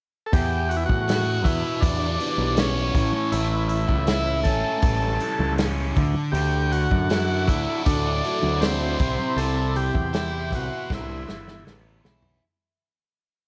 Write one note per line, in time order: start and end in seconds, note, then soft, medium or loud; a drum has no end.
0.26 0.33 A4 medium
0.33 2.20 E2 medium
0.33 0.85 E2 medium
0.33 0.72 G4 medium
0.33 kick loud
0.33 open hi-hat medium
0.69 0.77 F#4 medium
0.69 open hi-hat soft
0.77 0.84 E4 medium
0.86 1.45 A2 medium
0.86 1.47 F#4 medium
0.86 kick medium
0.86 high conga medium
1.08 2.95 F#4 medium
1.08 snare medium
1.08 open hi-hat medium
1.44 1.62 E2 medium
1.44 2.57 B3 medium
1.44 1.83 E4 medium
1.44 kick medium
1.44 open hi-hat soft
1.44 low conga medium
1.81 2.17 E2 medium
1.81 2.95 G3 medium
1.81 2.59 D4 medium
1.81 kick loud
1.81 open hi-hat medium
2.20 5.21 E3 medium
2.20 open hi-hat medium
2.38 2.90 B1 medium
2.38 high conga medium
2.57 2.95 B3 medium
2.57 3.35 C#4 medium
2.57 snare loud
2.57 open hi-hat medium
2.94 3.12 A1 medium
2.94 3.31 A2 medium
2.94 kick loud
2.94 open hi-hat soft
2.94 low conga medium
3.12 high conga medium
3.32 3.85 A1 medium
3.32 5.21 A2 medium
3.32 3.68 E4 medium
3.32 open hi-hat medium
3.69 4.40 E4 medium
3.69 open hi-hat soft
3.89 4.45 C#2 medium
3.89 kick medium
3.89 high conga medium
4.07 5.99 E4 medium
4.07 snare loud
4.07 open hi-hat medium
4.44 4.62 A1 medium
4.44 5.58 C#4 medium
4.44 4.81 A4 medium
4.44 kick medium
4.44 open hi-hat soft
4.44 low conga medium
4.82 5.17 A1 medium
4.82 5.97 G3 medium
4.82 5.54 A4 medium
4.82 kick loud
4.82 open hi-hat medium
5.20 5.99 E3 medium
5.20 open hi-hat soft
5.39 5.92 C#2 medium
5.39 high conga medium
5.58 5.96 C#4 medium
5.58 snare loud
5.58 open hi-hat medium
5.96 6.14 D2 medium
5.96 6.33 D3 medium
5.96 kick medium
5.96 open hi-hat soft
5.96 low conga medium
6.14 high conga medium
6.32 6.86 D2 medium
6.32 8.23 D3 medium
6.32 12.36 E4 medium
6.32 6.72 G4 medium
6.32 8.96 A4 medium
6.32 8.96 F#5 medium
6.32 8.96 D6 medium
6.32 open hi-hat medium
6.72 7.50 F#4 medium
6.72 open hi-hat soft
6.90 7.49 F#2 medium
6.90 kick medium
6.90 high conga medium
7.09 10.13 E4 medium
7.09 snare loud
7.09 open hi-hat medium
7.47 7.65 D2 medium
7.47 8.61 D4 medium
7.47 7.83 E4 medium
7.47 kick medium
7.47 open hi-hat soft
7.47 low conga medium
7.86 8.21 D2 loud
7.86 9.00 A3 medium
7.86 8.64 D4 medium
7.86 kick loud
7.86 open hi-hat medium
8.25 9.00 F#3 medium
8.25 open hi-hat soft
8.43 8.96 D2 medium
8.43 high conga medium
8.61 9.39 C4 medium
8.61 9.00 D4 medium
8.61 snare loud
8.61 open hi-hat medium
8.99 9.17 C2 medium
8.99 9.36 C3 medium
8.99 12.39 E5 medium
8.99 12.40 B5 medium
8.99 12.39 C6 medium
8.99 kick loud
8.99 open hi-hat soft
8.99 low conga medium
9.18 high conga medium
9.36 9.90 C2 medium
9.36 11.28 C3 medium
9.36 9.76 A4 medium
9.36 open hi-hat medium
9.76 10.54 G4 loud
9.76 open hi-hat soft
9.76 low conga medium
9.94 10.54 E2 medium
9.94 kick medium
9.94 high conga medium
10.13 12.03 E4 medium
10.13 snare loud
10.13 open hi-hat medium
10.51 10.69 C2 medium
10.51 11.64 B3 medium
10.51 kick medium
10.51 open hi-hat soft
10.51 low conga medium
10.55 10.92 F#4 medium
10.90 11.25 C2 medium
10.90 12.42 G3 medium
10.90 kick loud
10.90 snare medium
10.95 11.64 E4 medium
11.27 12.41 E3 medium
11.27 snare medium
11.46 snare medium
11.46 high conga medium
11.66 12.01 A1 medium
11.66 12.42 B3 medium
11.66 snare medium
11.66 low conga medium
12.04 12.39 B1 medium
12.04 12.42 E4 medium
12.04 snare medium
12.04 low conga medium
12.22 floor tom medium
12.22 high conga medium